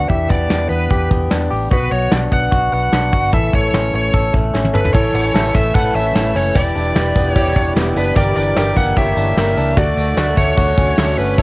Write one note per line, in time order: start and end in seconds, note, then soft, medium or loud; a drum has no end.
0.00 0.29 B3 medium
0.00 0.49 D4 medium
0.09 0.26 E2 medium
0.09 1.71 E3 medium
0.09 0.89 G4 medium
0.09 0.30 E5 medium
0.09 kick medium
0.09 closed hi-hat medium
0.29 0.47 E2 medium
0.29 0.70 B3 medium
0.29 0.69 D5 medium
0.29 kick medium
0.29 closed hi-hat medium
0.50 0.67 E2 medium
0.50 1.30 D4 medium
0.50 snare loud
0.50 closed hi-hat medium
0.69 0.87 E2 medium
0.69 1.10 B3 medium
0.69 1.07 B4 medium
0.69 closed hi-hat medium
0.90 1.07 E2 medium
0.90 1.49 G4 medium
0.90 kick medium
0.90 closed hi-hat medium
1.10 1.27 E2 medium
1.10 1.69 B3 medium
1.10 kick loud
1.10 closed hi-hat medium
1.31 1.48 E2 medium
1.31 1.75 D4 medium
1.31 snare loud
1.31 closed hi-hat medium
1.50 1.68 A1 medium
1.50 1.71 G4 medium
1.50 open hi-hat medium
1.71 1.88 B1 loud
1.71 1.90 B3 medium
1.71 2.50 F#4 medium
1.71 1.92 B4 medium
1.71 kick loud
1.71 closed hi-hat medium
1.91 2.08 B1 medium
1.91 2.30 B3 medium
1.91 2.12 C#5 medium
1.91 closed hi-hat medium
2.12 2.28 B1 medium
2.12 2.91 D4 medium
2.12 2.18 D5 loud
2.12 snare loud
2.12 closed hi-hat medium
2.31 2.48 B1 medium
2.31 2.71 B3 medium
2.31 2.72 F#5 loud
2.31 kick medium
2.31 closed hi-hat medium
2.52 2.69 B1 medium
2.52 3.11 F#4 medium
2.52 kick medium
2.52 closed hi-hat medium
2.72 2.89 B1 medium
2.72 3.37 B3 medium
2.72 3.33 F#5 medium
2.72 closed hi-hat medium
2.92 3.09 B1 medium
2.92 3.37 D4 medium
2.92 snare medium
2.92 closed hi-hat medium
3.13 3.29 G1 medium
3.13 3.33 F#4 medium
3.13 kick medium
3.13 open hi-hat medium
3.33 3.49 A1 loud
3.33 4.94 E3 medium
3.33 4.13 A4 medium
3.33 3.54 E5 medium
3.33 kick loud
3.33 closed hi-hat medium
3.53 3.70 A1 medium
3.53 3.93 A3 medium
3.53 3.92 C#5 medium
3.53 kick medium
3.53 closed hi-hat medium
3.73 3.90 A1 medium
3.73 4.53 C#4 medium
3.73 snare loud
3.73 closed hi-hat medium
3.93 4.10 A1 medium
3.93 4.33 A3 medium
3.93 4.32 C#5 medium
3.93 closed hi-hat medium
4.14 4.30 A1 medium
4.14 4.73 A4 medium
4.14 kick medium
4.14 closed hi-hat medium
4.33 4.50 A1 loud
4.33 4.98 A3 medium
4.33 kick loud
4.33 closed hi-hat medium
4.54 4.71 A1 medium
4.54 4.98 C#4 medium
4.54 snare soft
4.65 high tom medium
4.74 4.91 G1 medium
4.74 4.93 A4 medium
4.74 4.93 B4 medium
4.74 mid tom medium
4.85 floor tom medium
4.94 5.11 A1 loud
4.94 6.55 E3 medium
4.94 5.33 E4 medium
4.94 5.33 A4 medium
4.94 5.14 C#5 loud
4.94 5.33 C#5 medium
4.94 kick loud
4.94 crash medium
4.94 tambourine soft
5.14 5.31 A1 medium
5.14 5.25 B3 medium
5.14 5.56 C#5 loud
5.14 ride medium
5.14 tambourine medium
5.25 5.94 C#4 medium
5.34 5.51 A1 loud
5.34 5.73 E4 medium
5.34 5.74 A4 medium
5.34 5.73 A4 medium
5.34 5.73 E5 medium
5.34 snare loud
5.34 ride medium
5.34 tambourine medium
5.55 5.71 A1 medium
5.55 6.14 A3 medium
5.55 5.75 E5 loud
5.55 kick medium
5.55 ride medium
5.75 5.92 A1 medium
5.75 6.13 E4 medium
5.75 6.55 A4 medium
5.75 6.13 A4 medium
5.75 6.13 B4 medium
5.75 5.95 F#5 loud
5.75 kick loud
5.75 ride medium
5.75 tambourine medium
5.95 6.11 A1 loud
5.95 6.34 C#4 medium
5.95 6.37 E5 loud
5.95 ride medium
5.95 tambourine medium
6.15 6.32 A1 medium
6.15 6.59 A3 medium
6.15 6.54 E4 medium
6.15 6.53 A4 medium
6.15 6.54 C#5 medium
6.15 snare loud
6.15 ride medium
6.15 tambourine medium
6.35 6.52 F#1 medium
6.35 6.59 C#4 medium
6.35 6.56 C#5 medium
6.35 open hi-hat medium
6.35 ride medium
6.35 tambourine medium
6.55 6.72 E1 loud
6.55 8.15 E3 medium
6.55 6.93 E4 medium
6.55 6.93 G4 medium
6.55 6.95 G4 medium
6.55 6.94 D5 medium
6.55 7.33 D5 loud
6.55 kick loud
6.55 hi-hat pedal medium
6.55 ride medium
6.55 tambourine soft
6.75 6.92 E1 loud
6.75 7.56 D4 medium
6.75 ride medium
6.75 tambourine medium
6.95 7.12 E1 loud
6.95 7.34 E4 medium
6.95 7.35 G4 medium
6.95 7.34 G4 medium
6.95 7.34 B4 medium
6.95 snare loud
6.95 ride medium
6.95 tambourine medium
7.16 7.32 E1 medium
7.16 7.76 B3 medium
7.16 kick medium
7.16 ride medium
7.16 tambourine soft
7.33 7.52 E1 medium
7.33 7.74 E4 medium
7.33 7.74 G4 medium
7.33 8.16 G4 medium
7.33 7.73 C#5 loud
7.33 7.74 D5 loud
7.33 kick loud
7.33 ride medium
7.33 tambourine medium
7.55 7.73 E1 loud
7.55 7.97 D4 medium
7.55 kick loud
7.55 ride medium
7.55 tambourine soft
7.75 7.92 E1 medium
7.75 8.21 B3 medium
7.75 8.14 E4 medium
7.75 8.14 G4 medium
7.75 8.14 D5 medium
7.75 snare loud
7.75 ride medium
7.75 tambourine medium
7.96 8.13 F#1 medium
7.96 8.37 D4 medium
7.96 8.16 B4 medium
7.96 open hi-hat medium
7.96 ride medium
7.96 tambourine medium
8.15 8.33 G1 loud
8.15 9.78 E3 medium
8.15 8.54 E4 medium
8.15 8.55 G4 medium
8.15 8.56 G4 medium
8.15 8.55 A#4 medium
8.15 8.35 D5 medium
8.15 kick loud
8.15 hi-hat pedal medium
8.15 ride medium
8.15 tambourine soft
8.36 8.53 G1 medium
8.36 9.17 D4 medium
8.36 8.74 D5 loud
8.36 ride medium
8.36 tambourine medium
8.56 8.73 G1 medium
8.56 8.95 E4 medium
8.56 8.95 G4 medium
8.56 8.96 G4 medium
8.56 8.95 A#4 medium
8.56 snare loud
8.56 ride medium
8.56 tambourine medium
8.76 8.93 G1 medium
8.76 9.36 A#3 medium
8.76 8.97 F#5 loud
8.76 kick medium
8.76 ride medium
8.96 9.13 G1 loud
8.96 9.35 E4 medium
8.96 9.35 G4 medium
8.96 9.77 G4 medium
8.96 9.36 C#5 medium
8.96 9.35 E5 medium
8.96 kick medium
8.96 ride medium
8.96 tambourine medium
9.17 9.33 G1 loud
9.17 9.56 D4 medium
9.17 ride medium
9.17 tambourine medium
9.37 9.54 G1 loud
9.37 9.77 A#3 medium
9.37 9.76 E4 medium
9.37 9.76 G4 medium
9.37 9.76 A#4 medium
9.37 9.79 E5 medium
9.37 snare loud
9.37 ride medium
9.37 tambourine medium
9.57 9.74 C#2 medium
9.57 9.82 D4 medium
9.57 open hi-hat medium
9.57 ride medium
9.57 tambourine medium
9.77 9.94 D2 loud
9.77 10.37 A3 medium
9.77 10.16 D4 medium
9.77 10.16 F#4 medium
9.77 10.16 D5 medium
9.77 10.37 D5 medium
9.77 kick loud
9.77 hi-hat pedal medium
9.77 ride medium
9.77 tambourine soft
9.97 10.14 D2 medium
9.97 ride medium
9.97 tambourine medium
10.17 10.34 D2 loud
10.17 10.56 D4 medium
10.17 10.56 F#4 medium
10.17 10.57 E5 medium
10.17 snare loud
10.17 ride medium
10.17 tambourine medium
10.37 10.54 D2 medium
10.37 10.97 A3 medium
10.37 11.18 C#5 loud
10.37 kick medium
10.37 ride medium
10.57 10.74 D2 loud
10.57 10.96 D4 medium
10.57 11.38 F#4 medium
10.57 10.96 F#4 medium
10.57 10.96 C#5 medium
10.57 kick medium
10.57 ride medium
10.57 tambourine medium
10.77 10.95 D2 medium
10.77 11.17 C#4 medium
10.77 kick loud
10.77 ride medium
10.77 tambourine soft
10.98 11.15 D2 medium
10.98 11.42 A3 medium
10.98 11.36 D4 medium
10.98 11.37 F#4 medium
10.98 11.37 C#5 loud
10.98 snare loud
10.98 ride medium
10.98 tambourine medium
11.18 11.35 G1 medium
11.18 11.42 C#4 medium
11.18 11.39 B4 medium
11.18 open hi-hat medium
11.18 ride medium
11.18 tambourine medium
11.38 11.42 A1 medium
11.38 11.42 E3 medium
11.38 11.42 E4 medium
11.38 11.42 A4 medium
11.38 11.42 C#5 medium
11.38 kick loud
11.38 hi-hat pedal medium
11.38 ride medium
11.38 tambourine soft